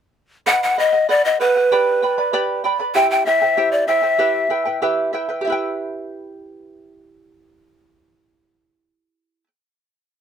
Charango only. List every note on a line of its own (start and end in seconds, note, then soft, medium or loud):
0.46 0.76 B4 medium
0.46 0.77 D#5 medium
0.46 0.77 F#5 medium
0.77 0.93 B4 medium
0.77 0.93 D#5 medium
0.77 0.91 F#5 medium
0.92 1.08 D#5 soft
0.92 1.08 F#5 soft
1.09 1.39 B4 medium
1.09 1.40 D#5 medium
1.09 1.40 F#5 medium
1.40 1.55 B4 medium
1.40 1.56 D#5 medium
1.40 1.55 F#5 medium
1.56 1.72 D#5 soft
1.56 1.71 F#5 soft
1.72 2.02 G4 medium
1.72 2.02 B4 medium
1.72 2.02 D5 medium
1.72 2.01 G5 medium
1.72 2.03 B5 medium
2.02 2.17 B4 medium
2.02 2.17 D5 medium
2.02 2.18 G5 medium
2.02 2.17 B5 medium
2.18 2.32 B4 soft
2.18 2.32 D5 soft
2.18 2.33 B5 medium
2.33 2.64 G4 medium
2.33 2.64 B4 medium
2.33 2.64 D5 medium
2.33 2.63 G5 medium
2.33 2.64 B5 medium
2.64 2.80 B4 medium
2.64 2.79 D5 medium
2.64 2.80 G5 medium
2.64 2.78 B5 medium
2.79 2.95 B4 soft
2.79 2.95 D5 soft
2.79 2.95 B5 soft
2.95 3.25 E4 medium
2.95 3.27 G4 medium
2.95 3.26 C5 medium
2.95 3.24 E5 medium
2.95 3.26 G5 medium
3.26 3.42 E4 medium
3.26 3.41 C5 medium
3.26 3.42 E5 medium
3.26 3.41 G5 medium
3.42 3.56 E4 soft
3.42 3.57 C5 soft
3.42 3.57 G5 soft
3.57 3.87 E4 medium
3.57 3.89 G4 medium
3.57 3.87 C5 medium
3.57 3.86 E5 medium
3.57 3.88 G5 medium
3.88 4.02 E4 medium
3.88 4.02 C5 medium
3.88 4.04 E5 medium
3.88 4.01 G5 medium
4.02 4.18 E4 soft
4.02 4.19 C5 soft
4.02 4.19 G5 soft
4.19 4.49 E4 medium
4.19 4.51 G4 medium
4.19 4.49 B4 medium
4.19 4.49 E5 medium
4.19 4.50 G5 medium
4.50 4.66 E4 medium
4.50 4.65 B4 medium
4.50 4.66 E5 medium
4.50 4.64 G5 medium
4.65 4.81 E4 soft
4.65 4.81 B4 soft
4.65 4.81 G5 medium
4.82 5.12 E4 medium
4.82 5.14 G4 medium
4.82 5.12 B4 medium
4.82 5.12 E5 medium
4.82 5.13 G5 medium
5.13 5.29 E4 medium
5.13 5.28 B4 medium
5.13 5.29 E5 medium
5.13 5.28 G5 medium
5.29 5.46 E4 soft
5.29 5.45 B4 soft
5.29 5.45 G5 soft
5.41 9.42 G4 medium
5.41 9.44 E5 medium
5.47 9.45 E4 medium
5.47 9.46 B4 medium
5.52 9.47 G5 medium